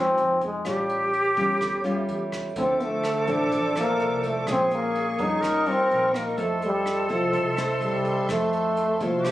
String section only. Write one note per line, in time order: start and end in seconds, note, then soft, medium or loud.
2.55 4.45 C5 medium
2.55 4.44 E5 medium
2.55 4.44 D6 medium
4.47 5.42 A#4 medium
4.47 5.41 G#5 medium
4.47 6.36 C#6 medium
5.43 6.37 G4 medium
5.43 6.37 D#5 medium
6.39 9.22 A4 medium
6.39 9.31 E5 medium
6.39 9.22 C6 medium
9.23 9.31 A5 medium
9.23 9.31 D6 medium